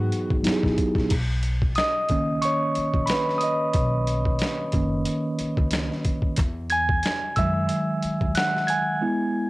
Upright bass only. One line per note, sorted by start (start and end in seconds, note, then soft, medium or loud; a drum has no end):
0.31 0.44 G#1 medium
0.47 muted upright bass stroke soft
0.64 0.77 A#1 medium
0.96 1.09 A#1 medium
1.11 1.73 B1 loud
2.11 2.40 C#2 medium
2.77 muted upright bass stroke soft
2.94 3.07 A#1 medium
3.75 4.36 B1 loud
4.74 5.03 F#1 medium
5.40 muted upright bass stroke medium
5.58 5.87 C#2 medium
6.39 7.00 E2 loud
7.38 7.67 F#2 medium
8.04 muted upright bass stroke soft
8.22 8.34 D#2 medium